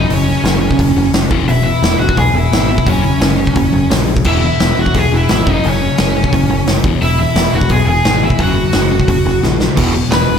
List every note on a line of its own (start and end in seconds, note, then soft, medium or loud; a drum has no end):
0.00 0.12 D#5 medium
0.09 0.32 F#1 loud
0.09 0.25 F#2 medium
0.09 0.25 C#3 medium
0.09 1.11 C#4 medium
0.09 1.11 C#5 medium
0.09 open hi-hat medium
0.28 0.43 F#2 medium
0.28 0.43 C#3 medium
0.44 0.67 F#1 medium
0.44 0.61 F#2 medium
0.44 0.61 C#3 medium
0.44 snare medium
0.44 open hi-hat medium
0.63 0.78 F#2 medium
0.63 0.78 C#3 medium
0.71 kick medium
0.79 0.90 F#1 medium
0.79 0.95 F#2 medium
0.79 0.95 C#3 medium
0.79 kick loud
0.79 open hi-hat medium
0.96 1.08 F#1 loud
0.96 1.12 F#2 medium
0.96 1.12 C#3 medium
1.13 1.25 F#1 medium
1.13 1.29 F#2 medium
1.13 1.30 C#3 medium
1.13 snare loud
1.13 open hi-hat medium
1.30 1.42 E1 loud
1.30 1.47 E2 medium
1.30 1.47 B2 medium
1.30 1.47 E3 medium
1.30 kick loud
1.48 1.71 E1 loud
1.48 1.63 E2 medium
1.48 1.64 B2 medium
1.48 1.63 E4 medium
1.48 1.63 E5 loud
1.48 open hi-hat medium
1.64 1.81 E2 medium
1.64 1.82 B2 medium
1.64 1.97 E4 medium
1.64 1.99 E5 loud
1.82 1.94 E1 loud
1.82 1.99 E2 medium
1.82 1.99 B2 medium
1.82 snare loud
1.82 open hi-hat medium
1.99 2.11 E1 medium
1.99 2.16 E2 medium
1.99 2.17 B2 medium
1.99 2.15 F#4 medium
1.99 2.15 F#5 medium
2.09 kick medium
2.17 2.29 B1 loud
2.17 2.33 E2 medium
2.17 2.33 B2 medium
2.17 2.34 G#4 medium
2.17 2.36 G#5 medium
2.17 kick loud
2.17 open hi-hat medium
2.34 2.45 E1 loud
2.34 2.50 E2 medium
2.34 2.51 B2 medium
2.34 2.68 E4 medium
2.34 2.68 E5 loud
2.52 2.75 G#1 medium
2.52 2.68 E2 medium
2.52 2.68 B2 medium
2.52 snare loud
2.52 open hi-hat soft
2.69 2.85 E2 medium
2.69 2.85 B2 medium
2.69 2.85 E4 medium
2.69 2.89 E5 medium
2.78 kick medium
2.86 3.10 F#1 loud
2.86 3.02 F#2 medium
2.86 3.02 C#3 loud
2.86 3.03 F#3 medium
2.86 3.87 C#4 medium
2.86 3.91 C#5 medium
2.86 kick loud
2.86 open hi-hat medium
3.03 3.19 F#2 medium
3.03 3.19 C#3 medium
3.20 3.44 F#1 medium
3.20 3.36 F#2 medium
3.20 3.36 C#3 medium
3.20 snare loud
3.20 open hi-hat medium
3.37 3.52 F#2 medium
3.37 3.53 C#3 medium
3.47 kick medium
3.53 3.68 F#1 loud
3.53 3.70 F#2 medium
3.53 3.70 C#3 medium
3.53 kick loud
3.53 open hi-hat medium
3.72 3.84 F#1 loud
3.72 3.88 F#2 medium
3.72 3.89 C#3 medium
3.90 4.27 A#1 medium
3.90 4.06 F#2 medium
3.90 4.06 C#3 medium
3.90 snare loud
3.90 open hi-hat medium
4.08 4.23 F#2 medium
4.08 4.24 C#3 medium
4.17 kick medium
4.24 4.48 E1 loud
4.24 4.41 E2 medium
4.24 4.42 B2 medium
4.24 4.42 E3 loud
4.24 4.42 E4 medium
4.24 4.42 E5 loud
4.24 kick loud
4.24 crash loud
4.43 4.58 E2 medium
4.43 4.58 B2 medium
4.43 4.76 E4 medium
4.43 4.80 E5 loud
4.60 4.72 E1 medium
4.60 4.76 E2 medium
4.60 4.76 B2 medium
4.60 snare loud
4.60 open hi-hat medium
4.77 4.88 E1 medium
4.77 4.93 E2 medium
4.77 4.93 B2 medium
4.77 4.94 F#4 medium
4.81 4.99 F#5 loud
4.86 kick medium
4.94 5.06 B1 medium
4.94 5.10 E2 medium
4.94 5.10 B2 medium
4.94 5.11 G#4 medium
4.94 kick medium
4.94 open hi-hat medium
4.99 5.14 G#5 loud
5.12 5.24 E1 medium
5.12 5.27 E2 medium
5.12 5.28 B2 medium
5.12 5.45 E4 medium
5.17 5.50 E5 loud
5.29 5.41 G#1 medium
5.29 5.45 E2 medium
5.29 5.45 B2 medium
5.29 snare loud
5.29 open hi-hat medium
5.47 5.58 F#1 loud
5.47 5.62 F#2 medium
5.47 5.63 C#3 medium
5.47 5.64 F#3 medium
5.47 5.64 D#4 medium
5.47 kick loud
5.52 5.65 D#5 medium
5.64 5.87 F#1 loud
5.64 5.79 F#2 medium
5.64 5.79 C#3 medium
5.64 6.65 C#4 medium
5.64 open hi-hat medium
5.69 6.70 C#5 medium
5.82 5.97 F#2 medium
5.82 5.97 C#3 medium
5.98 6.22 F#1 medium
5.98 6.14 F#2 medium
5.98 6.14 C#3 medium
5.98 snare loud
5.98 open hi-hat medium
6.17 6.32 F#2 medium
6.17 6.32 C#3 medium
6.24 kick medium
6.33 6.44 F#1 loud
6.33 6.48 F#2 medium
6.33 6.49 C#3 medium
6.33 kick loud
6.33 open hi-hat medium
6.49 6.61 F#1 medium
6.49 6.65 F#2 medium
6.49 6.65 C#3 medium
6.67 6.79 F#1 medium
6.67 6.83 F#2 medium
6.67 6.83 C#3 medium
6.67 snare loud
6.67 open hi-hat medium
6.84 6.96 E1 medium
6.84 7.01 E2 medium
6.84 7.01 B2 medium
6.84 7.02 E3 medium
6.84 kick loud
7.01 7.25 E1 loud
7.01 7.17 E2 medium
7.01 7.18 B2 medium
7.01 7.18 E4 medium
7.01 7.18 E5 medium
7.01 open hi-hat medium
7.20 7.35 E2 medium
7.20 7.35 B2 medium
7.20 7.51 E4 medium
7.20 7.55 E5 medium
7.35 7.47 E1 medium
7.35 7.53 E2 medium
7.35 7.53 B2 medium
7.35 snare loud
7.35 open hi-hat medium
7.54 7.65 E1 medium
7.54 7.70 E2 medium
7.54 7.70 B2 medium
7.54 7.70 F#4 medium
7.54 7.72 F#5 medium
7.61 kick medium
7.69 7.82 B1 medium
7.69 7.87 E2 medium
7.69 7.87 B2 medium
7.69 7.85 G#4 medium
7.69 7.87 G#5 loud
7.69 kick loud
7.69 open hi-hat medium
7.86 7.99 E1 loud
7.86 8.04 E2 medium
7.86 8.05 B2 medium
7.86 8.19 G#4 medium
7.86 8.24 G#5 loud
8.05 8.28 G#1 medium
8.05 8.21 E2 medium
8.05 8.22 B2 medium
8.05 snare loud
8.05 open hi-hat medium
8.23 8.39 E2 medium
8.23 8.39 B2 medium
8.23 8.39 E4 medium
8.23 8.41 E5 loud
8.30 kick medium
8.38 8.62 F#1 loud
8.38 8.56 F#2 medium
8.38 8.56 C#3 loud
8.38 8.56 F#3 loud
8.38 9.39 F#4 medium
8.38 9.44 F#5 medium
8.38 kick loud
8.38 open hi-hat medium
8.58 8.73 F#2 medium
8.58 8.73 C#3 medium
8.72 8.98 F#1 medium
8.72 8.90 F#2 medium
8.72 8.90 C#3 medium
8.72 snare loud
8.72 open hi-hat medium
8.91 9.06 F#2 medium
8.91 9.07 C#3 medium
9.00 kick medium
9.08 9.20 F#1 medium
9.08 9.24 F#2 medium
9.08 9.24 C#3 medium
9.08 kick loud
9.08 open hi-hat medium
9.26 9.37 F#1 loud
9.26 9.41 F#2 medium
9.26 9.42 C#3 medium
9.43 9.66 A#1 medium
9.43 9.59 F#2 medium
9.43 9.59 C#3 medium
9.43 snare medium
9.60 9.76 F#2 medium
9.60 9.76 C#3 medium
9.60 snare medium
9.77 10.01 E1 loud
9.77 9.94 E2 medium
9.77 9.94 B2 loud
9.77 9.94 E3 medium
9.77 kick loud
9.77 open hi-hat medium
9.77 crash loud
9.95 10.11 E2 medium
9.95 10.11 B2 medium
10.11 10.24 E1 medium
10.11 10.28 E2 medium
10.11 10.28 B2 medium
10.11 10.39 B4 medium
10.11 10.39 B5 medium
10.11 snare loud
10.11 open hi-hat medium
10.29 10.39 E1 medium
10.29 10.39 E2 medium
10.29 10.39 B2 medium